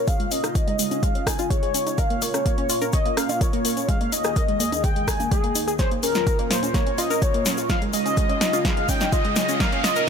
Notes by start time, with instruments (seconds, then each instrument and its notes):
Already playing: analog synth pad F4
0.07 analog synth pad C#3 G#3 D#4, synth pluck G#4, analog synth lead F5, kick, closed hi-hat, high bongo, shaker
0.20 synth pluck G#3, closed hi-hat
0.31 synth pluck C#4, analog synth lead D#5, open hi-hat, shaker
0.44 synth pluck D#4, cross-stick, closed hi-hat, shaker
0.55 synth pluck F4, kick, closed hi-hat, shaker
0.67 synth pluck G#3, closed hi-hat, high bongo
0.79 synth pluck G#3, open hi-hat, shaker
0.91 synth pluck C#4, closed hi-hat, high conga, shaker
1.03 synth pluck G#3, analog synth lead F5, kick, closed hi-hat, shaker
1.15 synth pluck C#4, closed hi-hat
1.26 synth pluck D#4, analog synth lead G#5, kick, cross-stick, open hi-hat, shaker
1.38 synth pluck F4, closed hi-hat, high bongo, high conga, shaker
1.50 synth pluck G#4, analog synth lead C#5, kick, closed hi-hat, shaker
1.63 synth pluck G#3, closed hi-hat
1.74 synth pluck C#4, open hi-hat, shaker
1.87 synth pluck D#4, closed hi-hat, shaker
1.98 analog synth pad A#2 A#3 C#4 F4, synth pluck A#4, analog synth lead F5, kick, closed hi-hat, high bongo, shaker
2.10 synth pluck A#3, closed hi-hat
2.22 synth pluck A#3, analog synth lead C#5, open hi-hat, shaker
2.34 synth pluck C#4, cross-stick, closed hi-hat, shaker
2.46 synth pluck A#3, kick, closed hi-hat, shaker
2.58 synth pluck C#4, closed hi-hat
2.69 synth pluck F4, open hi-hat, high bongo, shaker
2.81 synth pluck A#4, closed hi-hat, high conga, shaker
2.93 synth pluck C#5, analog synth lead D#5, kick, closed hi-hat, shaker
3.06 synth pluck A#3, closed hi-hat
3.17 synth pluck C#4, analog synth lead F5, cross-stick, open hi-hat, shaker
3.29 synth pluck F4, closed hi-hat, high bongo, high conga, shaker
3.41 synth pluck A#4, analog synth lead C#5, kick, closed hi-hat, shaker
3.53 synth pluck A#3, closed hi-hat
3.65 synth pluck A#3, open hi-hat, shaker
3.77 synth pluck C#4, closed hi-hat, shaker
3.89 analog synth pad D#2 D#3 G#4, synth pluck G#3, analog synth lead F5, kick, closed hi-hat, shaker
4.01 synth pluck A#3, closed hi-hat, high bongo
4.12 synth pluck D#4, analog synth lead D#5, open hi-hat, shaker
4.24 synth pluck G#4, cross-stick, closed hi-hat, shaker
4.36 synth pluck A#4, kick, closed hi-hat, shaker
4.48 synth pluck G#3, closed hi-hat
4.60 synth pluck A#3, open hi-hat, high bongo, shaker
4.72 synth pluck D#4, closed hi-hat, high conga, shaker
4.84 synth pluck G#4, analog synth lead G5, kick, closed hi-hat, shaker
4.96 synth pluck G#3, closed hi-hat
5.08 synth pluck G#3, analog synth lead G#5, kick, cross-stick, open hi-hat, shaker
5.20 synth pluck A#3, closed hi-hat, high conga, shaker
5.31 synth pluck G#3, analog synth lead G#4, kick, closed hi-hat, high bongo, shaker
5.44 synth pluck A#3, closed hi-hat
5.55 synth pluck D#4, open hi-hat, shaker
5.67 synth pluck G#4, closed hi-hat, shaker
5.79 analog synth pad A#2 A#3 C#4 F4, analog synth lead C5, synth pluck C#5, kick, snare, closed hi-hat, riser, shaker
5.91 synth pluck A#3, closed hi-hat
6.03 synth pluck C#4, analog synth lead A#4, open hi-hat, shaker
6.15 synth pluck F4, snare, closed hi-hat, shaker
6.27 synth pluck A#4, kick, closed hi-hat, shaker
6.39 synth pluck A#3, closed hi-hat, high bongo
6.51 synth pluck A#3, analog synth lead C5, snare, open hi-hat, shaker
6.63 synth pluck C#4, closed hi-hat, high conga, shaker
6.74 synth pluck A#3, analog synth lead C#5, kick, snare, closed hi-hat, shaker
6.87 synth pluck C#4, closed hi-hat
6.98 synth pluck F4, analog synth lead D#5, open hi-hat, high bongo, shaker
7.10 synth pluck A#4, closed hi-hat, high conga, shaker
7.22 synth pluck C#5, analog synth lead C#5, kick, closed hi-hat, shaker
7.34 synth pluck A#3, closed hi-hat
7.46 synth pluck C#4, snare, open hi-hat, shaker
7.57 synth pluck F4, closed hi-hat, shaker
7.69 analog synth pad C#3 G#3 D#4, synth pluck F4, analog synth lead F5, kick, snare, closed hi-hat, high bongo, shaker
7.82 synth pluck G#3, closed hi-hat
7.93 synth pluck G#3, analog synth lead D#5, open hi-hat, shaker
8.06 synth pluck C#4, closed hi-hat, shaker
8.17 synth pluck G#3, kick, closed hi-hat, shaker
8.29 synth pluck C#4, closed hi-hat, high bongo
8.41 synth pluck D#4, snare, open hi-hat, shaker
8.53 synth pluck F4, closed hi-hat, high conga, shaker
8.65 synth pluck G#4, analog synth lead F5, kick, snare, closed hi-hat, shaker
8.77 synth pluck G#3, closed hi-hat
8.89 synth pluck C#4, analog synth lead G5, kick, open hi-hat, shaker
9.01 synth pluck D#4, snare, closed hi-hat, high bongo, high conga, shaker
9.12 synth pluck F4, analog synth lead D#5, kick, closed hi-hat, shaker
9.25 synth pluck G#3, closed hi-hat
9.36 synth pluck G#3, snare, open hi-hat, shaker
9.49 synth pluck C#4, closed hi-hat, shaker
9.60 analog synth pad A#2 A#3 C#4, synth pluck A#3, analog synth lead F5, kick, snare, closed hi-hat, high bongo, shaker
9.72 synth pluck C#4, closed hi-hat
9.84 synth pluck F4, analog synth lead D#5, snare, open hi-hat, shaker
9.96 synth pluck A#4, closed hi-hat, shaker